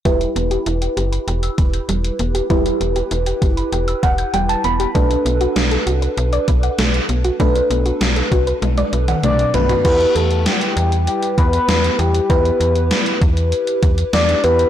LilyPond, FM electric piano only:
\new Staff \with { instrumentName = "FM electric piano" } { \time 4/4 \key e \minor \tempo 4 = 98 << { r1 | r2 r8 fis''8 g''16 a''16 b''8 | r1 | r1 |
r1 | r1 | } \\ { <e' g' b'>1 | <e' g' b'>1 | <d' a' b'>1 | <d' a' b'>1 |
<e' g' b'>1 | <e' g' b'>2.~ <e' g' b'>8 <e' g' b'>8 | } >> }